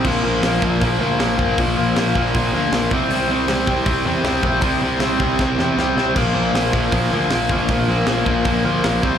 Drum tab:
CC |x-------|--------|--------|--------|
HH |--o-o-o-|o-o-o-o-|o-o-o-o-|o-o-----|
SD |--o---o-|--o---o-|--o---o-|--o-oooo|
BD |o--oo--o|o--oo--o|---oo--o|o--oo---|

CC |x-------|--------|
HH |--o-o-o-|o-o-o-o-|
SD |--o---o-|--o---o-|
BD |o--oo--o|o--oo--o|